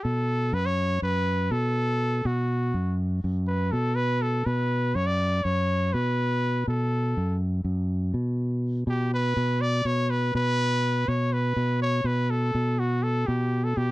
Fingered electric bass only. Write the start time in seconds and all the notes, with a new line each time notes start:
0.05 B2
0.53 F#2
1.02 F#2
1.51 B2
2.25 B2
2.74 F#2
3.24 F#2
3.73 B2
4.46 B2
4.95 F#2
5.45 F#2
5.94 B2
6.67 B2
7.17 F#2
7.64 F#2
8.14 B2
8.87 B2
9.37 B2
9.85 B2
10.35 B2
11.08 B2
11.56 B2
12.04 B2
12.55 B2
13.28 B2
13.77 B2